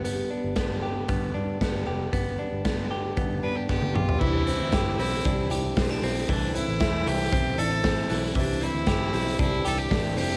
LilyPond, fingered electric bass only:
\new Staff \with { instrumentName = "Fingered electric bass" } { \clef bass \time 4/4 \key c \major \tempo 4 = 116 g,,8 r16 g,,4~ g,,16 g,8 g,8 g,,8 f,,8 | g,,8 r16 g,,4~ g,,16 g,8 g,8 g,,8 b,,8 | c,8. d,16 g,,8 b,,8 c,8 c,8 b,,8 b,,8 | c,8. a,,16 e,,8 c,8 b,,8 a,,4 b,,8 |
c,8. d,16 g,,8 b,,8 c,8 c,8 a,,8 f,,8 | }